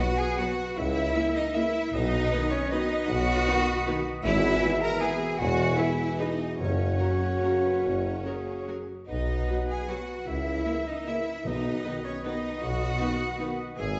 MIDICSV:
0, 0, Header, 1, 13, 480
1, 0, Start_track
1, 0, Key_signature, 5, "major"
1, 0, Tempo, 397351
1, 927, Time_signature, 3, 2, 24, 8
1, 1881, Tempo, 384123
1, 7161, Tempo, 414651
1, 10521, Tempo, 401606
1, 11961, Tempo, 389105
1, 17026, End_track
2, 0, Start_track
2, 0, Title_t, "Cor anglais"
2, 0, Program_c, 0, 69
2, 0, Note_on_c, 0, 78, 81
2, 922, Note_on_c, 0, 76, 77
2, 940, Note_off_c, 0, 78, 0
2, 2350, Note_on_c, 0, 75, 84
2, 2369, Note_off_c, 0, 76, 0
2, 5210, Note_off_c, 0, 75, 0
2, 5217, Note_on_c, 0, 76, 89
2, 6669, Note_on_c, 0, 80, 77
2, 6688, Note_off_c, 0, 76, 0
2, 7776, Note_off_c, 0, 80, 0
2, 8093, Note_on_c, 0, 78, 65
2, 10711, Note_off_c, 0, 78, 0
2, 10995, Note_on_c, 0, 78, 61
2, 12441, Note_on_c, 0, 76, 62
2, 12460, Note_off_c, 0, 78, 0
2, 13890, Note_off_c, 0, 76, 0
2, 13897, Note_on_c, 0, 75, 71
2, 16777, Note_on_c, 0, 76, 66
2, 16795, Note_off_c, 0, 75, 0
2, 17026, Note_off_c, 0, 76, 0
2, 17026, End_track
3, 0, Start_track
3, 0, Title_t, "Flute"
3, 0, Program_c, 1, 73
3, 0, Note_on_c, 1, 78, 91
3, 203, Note_off_c, 1, 78, 0
3, 210, Note_on_c, 1, 80, 89
3, 455, Note_on_c, 1, 78, 78
3, 473, Note_off_c, 1, 80, 0
3, 913, Note_off_c, 1, 78, 0
3, 920, Note_on_c, 1, 76, 96
3, 1630, Note_on_c, 1, 75, 83
3, 1648, Note_off_c, 1, 76, 0
3, 1876, Note_on_c, 1, 76, 91
3, 1894, Note_off_c, 1, 75, 0
3, 2362, Note_on_c, 1, 75, 92
3, 2381, Note_off_c, 1, 76, 0
3, 3083, Note_on_c, 1, 73, 86
3, 3102, Note_off_c, 1, 75, 0
3, 3320, Note_on_c, 1, 75, 97
3, 3339, Note_off_c, 1, 73, 0
3, 3782, Note_off_c, 1, 75, 0
3, 3789, Note_on_c, 1, 78, 109
3, 4978, Note_off_c, 1, 78, 0
3, 5230, Note_on_c, 1, 76, 105
3, 5943, Note_on_c, 1, 82, 98
3, 5962, Note_off_c, 1, 76, 0
3, 6191, Note_on_c, 1, 80, 85
3, 6209, Note_off_c, 1, 82, 0
3, 6662, Note_on_c, 1, 78, 92
3, 6681, Note_off_c, 1, 80, 0
3, 7161, Note_on_c, 1, 76, 81
3, 7179, Note_off_c, 1, 78, 0
3, 7631, Note_off_c, 1, 76, 0
3, 7638, Note_on_c, 1, 75, 71
3, 8094, Note_off_c, 1, 75, 0
3, 8114, Note_on_c, 1, 73, 70
3, 10478, Note_off_c, 1, 73, 0
3, 10983, Note_on_c, 1, 75, 69
3, 11666, Note_off_c, 1, 75, 0
3, 11731, Note_on_c, 1, 80, 64
3, 11980, Note_on_c, 1, 78, 62
3, 11998, Note_off_c, 1, 80, 0
3, 12423, Note_off_c, 1, 78, 0
3, 12431, Note_on_c, 1, 76, 76
3, 13179, Note_on_c, 1, 75, 68
3, 13197, Note_off_c, 1, 76, 0
3, 13435, Note_on_c, 1, 76, 69
3, 13454, Note_off_c, 1, 75, 0
3, 13911, Note_on_c, 1, 75, 76
3, 13930, Note_off_c, 1, 76, 0
3, 14620, Note_on_c, 1, 73, 70
3, 14638, Note_off_c, 1, 75, 0
3, 14865, Note_off_c, 1, 73, 0
3, 14873, Note_on_c, 1, 75, 77
3, 15328, Note_off_c, 1, 75, 0
3, 15342, Note_on_c, 1, 78, 83
3, 16522, Note_off_c, 1, 78, 0
3, 16773, Note_on_c, 1, 80, 90
3, 17026, Note_off_c, 1, 80, 0
3, 17026, End_track
4, 0, Start_track
4, 0, Title_t, "Violin section"
4, 0, Program_c, 2, 48
4, 0, Note_on_c, 2, 78, 93
4, 207, Note_off_c, 2, 78, 0
4, 214, Note_on_c, 2, 80, 90
4, 460, Note_off_c, 2, 80, 0
4, 460, Note_on_c, 2, 78, 78
4, 918, Note_off_c, 2, 78, 0
4, 926, Note_on_c, 2, 76, 92
4, 1624, Note_off_c, 2, 76, 0
4, 1633, Note_on_c, 2, 75, 91
4, 1873, Note_off_c, 2, 75, 0
4, 1889, Note_on_c, 2, 76, 90
4, 2353, Note_off_c, 2, 76, 0
4, 2375, Note_on_c, 2, 75, 99
4, 3065, Note_on_c, 2, 73, 88
4, 3092, Note_off_c, 2, 75, 0
4, 3323, Note_off_c, 2, 73, 0
4, 3323, Note_on_c, 2, 75, 99
4, 3776, Note_on_c, 2, 78, 101
4, 3784, Note_off_c, 2, 75, 0
4, 4996, Note_off_c, 2, 78, 0
4, 5233, Note_on_c, 2, 76, 102
4, 5908, Note_off_c, 2, 76, 0
4, 5969, Note_on_c, 2, 82, 102
4, 6199, Note_on_c, 2, 80, 87
4, 6210, Note_off_c, 2, 82, 0
4, 6674, Note_off_c, 2, 80, 0
4, 6678, Note_on_c, 2, 78, 89
4, 7142, Note_on_c, 2, 76, 79
4, 7161, Note_off_c, 2, 78, 0
4, 7611, Note_on_c, 2, 75, 78
4, 7631, Note_off_c, 2, 76, 0
4, 8090, Note_off_c, 2, 75, 0
4, 8113, Note_on_c, 2, 73, 70
4, 10478, Note_off_c, 2, 73, 0
4, 10981, Note_on_c, 2, 75, 67
4, 11665, Note_off_c, 2, 75, 0
4, 11727, Note_on_c, 2, 80, 70
4, 11959, Note_on_c, 2, 78, 64
4, 11964, Note_off_c, 2, 80, 0
4, 12433, Note_off_c, 2, 78, 0
4, 12456, Note_on_c, 2, 76, 69
4, 13167, Note_off_c, 2, 76, 0
4, 13194, Note_on_c, 2, 75, 72
4, 13430, Note_off_c, 2, 75, 0
4, 13439, Note_on_c, 2, 76, 73
4, 13899, Note_on_c, 2, 75, 76
4, 13902, Note_off_c, 2, 76, 0
4, 14624, Note_off_c, 2, 75, 0
4, 14629, Note_on_c, 2, 73, 73
4, 14870, Note_off_c, 2, 73, 0
4, 14873, Note_on_c, 2, 75, 74
4, 15329, Note_off_c, 2, 75, 0
4, 15336, Note_on_c, 2, 78, 85
4, 16544, Note_off_c, 2, 78, 0
4, 16752, Note_on_c, 2, 80, 87
4, 17026, Note_off_c, 2, 80, 0
4, 17026, End_track
5, 0, Start_track
5, 0, Title_t, "Violin section"
5, 0, Program_c, 3, 48
5, 484, Note_on_c, 3, 71, 69
5, 581, Note_off_c, 3, 71, 0
5, 1384, Note_on_c, 3, 76, 66
5, 1481, Note_off_c, 3, 76, 0
5, 1851, Note_on_c, 3, 76, 68
5, 1950, Note_off_c, 3, 76, 0
5, 2819, Note_on_c, 3, 71, 71
5, 2919, Note_off_c, 3, 71, 0
5, 3322, Note_on_c, 3, 71, 72
5, 3422, Note_off_c, 3, 71, 0
5, 4276, Note_on_c, 3, 71, 70
5, 4376, Note_off_c, 3, 71, 0
5, 4759, Note_on_c, 3, 71, 72
5, 4859, Note_off_c, 3, 71, 0
5, 5695, Note_on_c, 3, 71, 67
5, 5795, Note_off_c, 3, 71, 0
5, 6202, Note_on_c, 3, 71, 68
5, 6302, Note_off_c, 3, 71, 0
5, 7136, Note_on_c, 3, 71, 58
5, 7230, Note_off_c, 3, 71, 0
5, 7628, Note_on_c, 3, 71, 58
5, 7720, Note_off_c, 3, 71, 0
5, 8568, Note_on_c, 3, 70, 50
5, 8660, Note_off_c, 3, 70, 0
5, 9076, Note_on_c, 3, 70, 49
5, 9169, Note_off_c, 3, 70, 0
5, 10022, Note_on_c, 3, 70, 46
5, 10114, Note_off_c, 3, 70, 0
5, 10518, Note_on_c, 3, 70, 45
5, 10614, Note_off_c, 3, 70, 0
5, 11467, Note_on_c, 3, 71, 47
5, 11562, Note_off_c, 3, 71, 0
5, 11948, Note_on_c, 3, 71, 54
5, 12047, Note_off_c, 3, 71, 0
5, 12915, Note_on_c, 3, 76, 51
5, 13014, Note_off_c, 3, 76, 0
5, 13417, Note_on_c, 3, 76, 58
5, 13516, Note_off_c, 3, 76, 0
5, 14367, Note_on_c, 3, 71, 56
5, 14466, Note_off_c, 3, 71, 0
5, 14856, Note_on_c, 3, 71, 61
5, 14955, Note_off_c, 3, 71, 0
5, 15804, Note_on_c, 3, 71, 57
5, 15903, Note_off_c, 3, 71, 0
5, 16294, Note_on_c, 3, 71, 57
5, 16393, Note_off_c, 3, 71, 0
5, 17026, End_track
6, 0, Start_track
6, 0, Title_t, "Clarinet"
6, 0, Program_c, 4, 71
6, 0, Note_on_c, 4, 71, 77
6, 929, Note_on_c, 4, 70, 74
6, 948, Note_off_c, 4, 71, 0
6, 2346, Note_on_c, 4, 71, 86
6, 2364, Note_off_c, 4, 70, 0
6, 5223, Note_off_c, 4, 71, 0
6, 5231, Note_on_c, 4, 71, 87
6, 7731, Note_off_c, 4, 71, 0
6, 8098, Note_on_c, 4, 70, 56
6, 8495, Note_off_c, 4, 70, 0
6, 8579, Note_on_c, 4, 66, 67
6, 9322, Note_on_c, 4, 71, 66
6, 9339, Note_off_c, 4, 66, 0
6, 9551, Note_on_c, 4, 70, 62
6, 9568, Note_off_c, 4, 71, 0
6, 10023, Note_on_c, 4, 68, 66
6, 10040, Note_off_c, 4, 70, 0
6, 10762, Note_off_c, 4, 68, 0
6, 10769, Note_on_c, 4, 66, 51
6, 10985, Note_off_c, 4, 66, 0
6, 10992, Note_on_c, 4, 71, 58
6, 12436, Note_on_c, 4, 70, 62
6, 12455, Note_off_c, 4, 71, 0
6, 13878, Note_off_c, 4, 70, 0
6, 13886, Note_on_c, 4, 71, 69
6, 16718, Note_off_c, 4, 71, 0
6, 16753, Note_on_c, 4, 71, 68
6, 17026, Note_off_c, 4, 71, 0
6, 17026, End_track
7, 0, Start_track
7, 0, Title_t, "Cello section"
7, 0, Program_c, 5, 48
7, 0, Note_on_c, 5, 66, 103
7, 212, Note_off_c, 5, 66, 0
7, 215, Note_on_c, 5, 68, 101
7, 460, Note_off_c, 5, 68, 0
7, 463, Note_on_c, 5, 66, 93
7, 928, Note_off_c, 5, 66, 0
7, 931, Note_on_c, 5, 64, 106
7, 1640, Note_off_c, 5, 64, 0
7, 1642, Note_on_c, 5, 63, 93
7, 1879, Note_on_c, 5, 64, 107
7, 1883, Note_off_c, 5, 63, 0
7, 2357, Note_off_c, 5, 64, 0
7, 2362, Note_on_c, 5, 63, 121
7, 3072, Note_off_c, 5, 63, 0
7, 3082, Note_on_c, 5, 61, 105
7, 3329, Note_on_c, 5, 63, 109
7, 3331, Note_off_c, 5, 61, 0
7, 3795, Note_on_c, 5, 66, 127
7, 3797, Note_off_c, 5, 63, 0
7, 5005, Note_off_c, 5, 66, 0
7, 5237, Note_on_c, 5, 64, 127
7, 5910, Note_off_c, 5, 64, 0
7, 5964, Note_on_c, 5, 70, 107
7, 6202, Note_on_c, 5, 68, 94
7, 6203, Note_off_c, 5, 70, 0
7, 6669, Note_on_c, 5, 66, 109
7, 6676, Note_off_c, 5, 68, 0
7, 7147, Note_off_c, 5, 66, 0
7, 7159, Note_on_c, 5, 64, 96
7, 7631, Note_on_c, 5, 63, 87
7, 7639, Note_off_c, 5, 64, 0
7, 8100, Note_off_c, 5, 63, 0
7, 8105, Note_on_c, 5, 61, 83
7, 10474, Note_off_c, 5, 61, 0
7, 10995, Note_on_c, 5, 63, 84
7, 11672, Note_off_c, 5, 63, 0
7, 11722, Note_on_c, 5, 68, 78
7, 11960, Note_on_c, 5, 66, 74
7, 11962, Note_off_c, 5, 68, 0
7, 12429, Note_on_c, 5, 64, 86
7, 12433, Note_off_c, 5, 66, 0
7, 13167, Note_on_c, 5, 63, 79
7, 13168, Note_off_c, 5, 64, 0
7, 13407, Note_on_c, 5, 64, 86
7, 13416, Note_off_c, 5, 63, 0
7, 13886, Note_off_c, 5, 64, 0
7, 13894, Note_on_c, 5, 63, 95
7, 14607, Note_off_c, 5, 63, 0
7, 14628, Note_on_c, 5, 61, 82
7, 14725, Note_off_c, 5, 61, 0
7, 14862, Note_on_c, 5, 63, 90
7, 15321, Note_on_c, 5, 66, 105
7, 15323, Note_off_c, 5, 63, 0
7, 16536, Note_off_c, 5, 66, 0
7, 16761, Note_on_c, 5, 68, 102
7, 17026, Note_off_c, 5, 68, 0
7, 17026, End_track
8, 0, Start_track
8, 0, Title_t, "French horn section"
8, 0, Program_c, 6, 60
8, 0, Note_on_c, 6, 59, 65
8, 0, Note_on_c, 6, 66, 64
8, 151, Note_off_c, 6, 59, 0
8, 153, Note_off_c, 6, 66, 0
8, 466, Note_on_c, 6, 66, 61
8, 471, Note_on_c, 6, 59, 66
8, 634, Note_off_c, 6, 66, 0
8, 638, Note_off_c, 6, 59, 0
8, 1401, Note_on_c, 6, 70, 66
8, 1406, Note_on_c, 6, 58, 66
8, 1575, Note_off_c, 6, 70, 0
8, 1578, Note_off_c, 6, 58, 0
8, 1888, Note_on_c, 6, 58, 68
8, 1892, Note_on_c, 6, 70, 66
8, 2060, Note_off_c, 6, 58, 0
8, 2063, Note_off_c, 6, 70, 0
8, 2822, Note_on_c, 6, 66, 71
8, 2823, Note_on_c, 6, 59, 68
8, 3004, Note_off_c, 6, 66, 0
8, 3005, Note_off_c, 6, 59, 0
8, 3325, Note_on_c, 6, 66, 77
8, 3326, Note_on_c, 6, 59, 69
8, 3496, Note_off_c, 6, 66, 0
8, 3497, Note_off_c, 6, 59, 0
8, 4277, Note_on_c, 6, 59, 71
8, 4277, Note_on_c, 6, 66, 71
8, 4457, Note_off_c, 6, 59, 0
8, 4457, Note_off_c, 6, 66, 0
8, 4751, Note_on_c, 6, 66, 71
8, 4756, Note_on_c, 6, 59, 72
8, 4924, Note_off_c, 6, 66, 0
8, 4927, Note_off_c, 6, 59, 0
8, 5226, Note_on_c, 6, 68, 84
8, 5233, Note_on_c, 6, 59, 88
8, 6151, Note_off_c, 6, 68, 0
8, 6154, Note_off_c, 6, 59, 0
8, 6213, Note_on_c, 6, 59, 70
8, 6221, Note_on_c, 6, 68, 75
8, 6669, Note_off_c, 6, 59, 0
8, 6669, Note_off_c, 6, 68, 0
8, 6684, Note_on_c, 6, 59, 73
8, 6684, Note_on_c, 6, 68, 73
8, 7154, Note_off_c, 6, 68, 0
8, 7155, Note_off_c, 6, 59, 0
8, 7169, Note_on_c, 6, 59, 68
8, 7176, Note_on_c, 6, 68, 71
8, 8090, Note_off_c, 6, 59, 0
8, 8093, Note_off_c, 6, 68, 0
8, 8111, Note_on_c, 6, 58, 68
8, 8115, Note_on_c, 6, 66, 66
8, 10768, Note_off_c, 6, 58, 0
8, 10770, Note_off_c, 6, 66, 0
8, 11487, Note_on_c, 6, 59, 52
8, 11488, Note_on_c, 6, 66, 49
8, 11660, Note_off_c, 6, 59, 0
8, 11661, Note_off_c, 6, 66, 0
8, 11970, Note_on_c, 6, 59, 51
8, 11976, Note_on_c, 6, 66, 48
8, 12139, Note_off_c, 6, 59, 0
8, 12144, Note_off_c, 6, 66, 0
8, 12919, Note_on_c, 6, 58, 51
8, 12923, Note_on_c, 6, 70, 53
8, 13099, Note_off_c, 6, 58, 0
8, 13102, Note_off_c, 6, 70, 0
8, 13430, Note_on_c, 6, 70, 54
8, 13432, Note_on_c, 6, 58, 55
8, 13599, Note_off_c, 6, 70, 0
8, 13601, Note_off_c, 6, 58, 0
8, 14370, Note_on_c, 6, 66, 59
8, 14373, Note_on_c, 6, 59, 58
8, 14549, Note_off_c, 6, 66, 0
8, 14551, Note_off_c, 6, 59, 0
8, 14862, Note_on_c, 6, 66, 60
8, 14866, Note_on_c, 6, 59, 59
8, 15033, Note_off_c, 6, 66, 0
8, 15036, Note_off_c, 6, 59, 0
8, 15824, Note_on_c, 6, 59, 57
8, 15824, Note_on_c, 6, 66, 58
8, 16000, Note_off_c, 6, 59, 0
8, 16000, Note_off_c, 6, 66, 0
8, 16303, Note_on_c, 6, 66, 57
8, 16308, Note_on_c, 6, 59, 56
8, 16472, Note_off_c, 6, 66, 0
8, 16476, Note_off_c, 6, 59, 0
8, 17026, End_track
9, 0, Start_track
9, 0, Title_t, "Viola section"
9, 0, Program_c, 7, 48
9, 469, Note_on_c, 7, 59, 71
9, 470, Note_on_c, 7, 66, 62
9, 566, Note_off_c, 7, 59, 0
9, 567, Note_off_c, 7, 66, 0
9, 1393, Note_on_c, 7, 58, 73
9, 1393, Note_on_c, 7, 64, 71
9, 1490, Note_off_c, 7, 58, 0
9, 1490, Note_off_c, 7, 64, 0
9, 1881, Note_on_c, 7, 64, 67
9, 1883, Note_on_c, 7, 58, 72
9, 1981, Note_off_c, 7, 64, 0
9, 1983, Note_off_c, 7, 58, 0
9, 2830, Note_on_c, 7, 63, 73
9, 2834, Note_on_c, 7, 59, 78
9, 2930, Note_off_c, 7, 63, 0
9, 2934, Note_off_c, 7, 59, 0
9, 3337, Note_on_c, 7, 59, 75
9, 3344, Note_on_c, 7, 63, 72
9, 3437, Note_off_c, 7, 59, 0
9, 3444, Note_off_c, 7, 63, 0
9, 4262, Note_on_c, 7, 63, 82
9, 4263, Note_on_c, 7, 59, 81
9, 4362, Note_off_c, 7, 63, 0
9, 4363, Note_off_c, 7, 59, 0
9, 4764, Note_on_c, 7, 59, 74
9, 4769, Note_on_c, 7, 63, 77
9, 4864, Note_off_c, 7, 59, 0
9, 4869, Note_off_c, 7, 63, 0
9, 5715, Note_on_c, 7, 64, 75
9, 5717, Note_on_c, 7, 59, 71
9, 5815, Note_off_c, 7, 64, 0
9, 5817, Note_off_c, 7, 59, 0
9, 6203, Note_on_c, 7, 64, 68
9, 6204, Note_on_c, 7, 59, 70
9, 6303, Note_off_c, 7, 64, 0
9, 6304, Note_off_c, 7, 59, 0
9, 7153, Note_on_c, 7, 68, 64
9, 7154, Note_on_c, 7, 59, 62
9, 7246, Note_off_c, 7, 68, 0
9, 7247, Note_off_c, 7, 59, 0
9, 7636, Note_on_c, 7, 59, 57
9, 7643, Note_on_c, 7, 68, 58
9, 7729, Note_off_c, 7, 59, 0
9, 7736, Note_off_c, 7, 68, 0
9, 8568, Note_on_c, 7, 54, 53
9, 8573, Note_on_c, 7, 66, 53
9, 8660, Note_off_c, 7, 54, 0
9, 8666, Note_off_c, 7, 66, 0
9, 9072, Note_on_c, 7, 54, 50
9, 9072, Note_on_c, 7, 66, 47
9, 9164, Note_off_c, 7, 54, 0
9, 9165, Note_off_c, 7, 66, 0
9, 10017, Note_on_c, 7, 66, 47
9, 10018, Note_on_c, 7, 54, 49
9, 10109, Note_off_c, 7, 66, 0
9, 10111, Note_off_c, 7, 54, 0
9, 10514, Note_on_c, 7, 54, 48
9, 10516, Note_on_c, 7, 66, 48
9, 10609, Note_off_c, 7, 54, 0
9, 10611, Note_off_c, 7, 66, 0
9, 11478, Note_on_c, 7, 66, 50
9, 11482, Note_on_c, 7, 54, 51
9, 11574, Note_off_c, 7, 66, 0
9, 11578, Note_off_c, 7, 54, 0
9, 11960, Note_on_c, 7, 54, 51
9, 11960, Note_on_c, 7, 66, 50
9, 12059, Note_off_c, 7, 54, 0
9, 12059, Note_off_c, 7, 66, 0
9, 12906, Note_on_c, 7, 58, 57
9, 12906, Note_on_c, 7, 64, 55
9, 13004, Note_off_c, 7, 64, 0
9, 13005, Note_off_c, 7, 58, 0
9, 13409, Note_on_c, 7, 58, 57
9, 13416, Note_on_c, 7, 64, 54
9, 13508, Note_off_c, 7, 58, 0
9, 13515, Note_off_c, 7, 64, 0
9, 14378, Note_on_c, 7, 59, 61
9, 14380, Note_on_c, 7, 63, 61
9, 14477, Note_off_c, 7, 59, 0
9, 14478, Note_off_c, 7, 63, 0
9, 14860, Note_on_c, 7, 59, 61
9, 14867, Note_on_c, 7, 63, 59
9, 14959, Note_off_c, 7, 59, 0
9, 14966, Note_off_c, 7, 63, 0
9, 15791, Note_on_c, 7, 59, 65
9, 15794, Note_on_c, 7, 63, 64
9, 15889, Note_off_c, 7, 59, 0
9, 15893, Note_off_c, 7, 63, 0
9, 16279, Note_on_c, 7, 59, 58
9, 16285, Note_on_c, 7, 63, 59
9, 16377, Note_off_c, 7, 59, 0
9, 16384, Note_off_c, 7, 63, 0
9, 17026, End_track
10, 0, Start_track
10, 0, Title_t, "Trombone section"
10, 0, Program_c, 8, 61
10, 0, Note_on_c, 8, 47, 60
10, 0, Note_on_c, 8, 54, 63
10, 135, Note_off_c, 8, 54, 0
10, 136, Note_off_c, 8, 47, 0
10, 455, Note_on_c, 8, 54, 67
10, 460, Note_on_c, 8, 47, 67
10, 626, Note_off_c, 8, 54, 0
10, 629, Note_off_c, 8, 47, 0
10, 1393, Note_on_c, 8, 49, 66
10, 1397, Note_on_c, 8, 52, 65
10, 1569, Note_off_c, 8, 49, 0
10, 1571, Note_off_c, 8, 52, 0
10, 1872, Note_on_c, 8, 49, 71
10, 1872, Note_on_c, 8, 52, 69
10, 2047, Note_off_c, 8, 52, 0
10, 2048, Note_off_c, 8, 49, 0
10, 2835, Note_on_c, 8, 51, 72
10, 2842, Note_on_c, 8, 47, 71
10, 3014, Note_off_c, 8, 51, 0
10, 3020, Note_off_c, 8, 47, 0
10, 3345, Note_on_c, 8, 47, 79
10, 3349, Note_on_c, 8, 51, 73
10, 3511, Note_off_c, 8, 47, 0
10, 3515, Note_off_c, 8, 51, 0
10, 4274, Note_on_c, 8, 47, 77
10, 4276, Note_on_c, 8, 51, 75
10, 4454, Note_off_c, 8, 47, 0
10, 4455, Note_off_c, 8, 51, 0
10, 4773, Note_on_c, 8, 51, 77
10, 4774, Note_on_c, 8, 47, 77
10, 4941, Note_off_c, 8, 51, 0
10, 4942, Note_off_c, 8, 47, 0
10, 5239, Note_on_c, 8, 47, 90
10, 5240, Note_on_c, 8, 52, 81
10, 6157, Note_off_c, 8, 47, 0
10, 6158, Note_off_c, 8, 52, 0
10, 6204, Note_on_c, 8, 47, 76
10, 6211, Note_on_c, 8, 52, 78
10, 6663, Note_off_c, 8, 52, 0
10, 6667, Note_off_c, 8, 47, 0
10, 6678, Note_on_c, 8, 52, 76
10, 6685, Note_on_c, 8, 47, 73
10, 7151, Note_off_c, 8, 52, 0
10, 7155, Note_off_c, 8, 47, 0
10, 7176, Note_on_c, 8, 47, 67
10, 7177, Note_on_c, 8, 52, 69
10, 8093, Note_off_c, 8, 47, 0
10, 8094, Note_off_c, 8, 52, 0
10, 8107, Note_on_c, 8, 54, 68
10, 8119, Note_on_c, 8, 49, 68
10, 10766, Note_off_c, 8, 54, 0
10, 10772, Note_off_c, 8, 49, 0
10, 11466, Note_on_c, 8, 47, 49
10, 11467, Note_on_c, 8, 54, 49
10, 11644, Note_off_c, 8, 47, 0
10, 11645, Note_off_c, 8, 54, 0
10, 11962, Note_on_c, 8, 54, 51
10, 11966, Note_on_c, 8, 47, 53
10, 12133, Note_off_c, 8, 54, 0
10, 12136, Note_off_c, 8, 47, 0
10, 12922, Note_on_c, 8, 49, 56
10, 12923, Note_on_c, 8, 52, 52
10, 13101, Note_off_c, 8, 49, 0
10, 13102, Note_off_c, 8, 52, 0
10, 13416, Note_on_c, 8, 49, 56
10, 13421, Note_on_c, 8, 52, 56
10, 13588, Note_off_c, 8, 49, 0
10, 13592, Note_off_c, 8, 52, 0
10, 14370, Note_on_c, 8, 47, 56
10, 14380, Note_on_c, 8, 51, 58
10, 14549, Note_off_c, 8, 47, 0
10, 14557, Note_off_c, 8, 51, 0
10, 14864, Note_on_c, 8, 47, 58
10, 14866, Note_on_c, 8, 51, 61
10, 15034, Note_off_c, 8, 47, 0
10, 15036, Note_off_c, 8, 51, 0
10, 15806, Note_on_c, 8, 47, 62
10, 15806, Note_on_c, 8, 51, 61
10, 15985, Note_off_c, 8, 51, 0
10, 15986, Note_off_c, 8, 47, 0
10, 16292, Note_on_c, 8, 51, 59
10, 16294, Note_on_c, 8, 47, 59
10, 16464, Note_off_c, 8, 51, 0
10, 16465, Note_off_c, 8, 47, 0
10, 17026, End_track
11, 0, Start_track
11, 0, Title_t, "Timpani"
11, 0, Program_c, 10, 47
11, 0, Note_on_c, 10, 47, 96
11, 165, Note_off_c, 10, 47, 0
11, 8112, Note_on_c, 10, 42, 83
11, 8785, Note_off_c, 10, 42, 0
11, 13887, Note_on_c, 10, 47, 78
11, 14568, Note_off_c, 10, 47, 0
11, 17026, End_track
12, 0, Start_track
12, 0, Title_t, "Double bass section"
12, 0, Program_c, 11, 48
12, 934, Note_on_c, 11, 37, 83
12, 1317, Note_off_c, 11, 37, 0
12, 2357, Note_on_c, 11, 35, 91
12, 2750, Note_off_c, 11, 35, 0
12, 3812, Note_on_c, 11, 35, 91
12, 4196, Note_off_c, 11, 35, 0
12, 5241, Note_on_c, 11, 32, 98
12, 5628, Note_off_c, 11, 32, 0
12, 6688, Note_on_c, 11, 28, 84
12, 7081, Note_off_c, 11, 28, 0
12, 8101, Note_on_c, 11, 30, 68
12, 8494, Note_off_c, 11, 30, 0
12, 9552, Note_on_c, 11, 30, 62
12, 9941, Note_off_c, 11, 30, 0
12, 11008, Note_on_c, 11, 35, 60
12, 11396, Note_off_c, 11, 35, 0
12, 12439, Note_on_c, 11, 37, 66
12, 12836, Note_off_c, 11, 37, 0
12, 13901, Note_on_c, 11, 35, 72
12, 14292, Note_off_c, 11, 35, 0
12, 15342, Note_on_c, 11, 35, 75
12, 15729, Note_off_c, 11, 35, 0
12, 16781, Note_on_c, 11, 32, 70
12, 17026, Note_off_c, 11, 32, 0
12, 17026, End_track
13, 0, Start_track
13, 0, Title_t, "Tuba"
13, 0, Program_c, 12, 58
13, 937, Note_on_c, 12, 37, 87
13, 1319, Note_off_c, 12, 37, 0
13, 2359, Note_on_c, 12, 35, 92
13, 2751, Note_off_c, 12, 35, 0
13, 3792, Note_on_c, 12, 35, 101
13, 4185, Note_off_c, 12, 35, 0
13, 5241, Note_on_c, 12, 32, 101
13, 5628, Note_off_c, 12, 32, 0
13, 6687, Note_on_c, 12, 28, 88
13, 7081, Note_off_c, 12, 28, 0
13, 8118, Note_on_c, 12, 30, 70
13, 8503, Note_off_c, 12, 30, 0
13, 9549, Note_on_c, 12, 30, 64
13, 9940, Note_off_c, 12, 30, 0
13, 11005, Note_on_c, 12, 35, 68
13, 11394, Note_off_c, 12, 35, 0
13, 12432, Note_on_c, 12, 37, 64
13, 12832, Note_off_c, 12, 37, 0
13, 13891, Note_on_c, 12, 35, 73
13, 14287, Note_off_c, 12, 35, 0
13, 15333, Note_on_c, 12, 35, 80
13, 15724, Note_off_c, 12, 35, 0
13, 16764, Note_on_c, 12, 32, 75
13, 17026, Note_off_c, 12, 32, 0
13, 17026, End_track
0, 0, End_of_file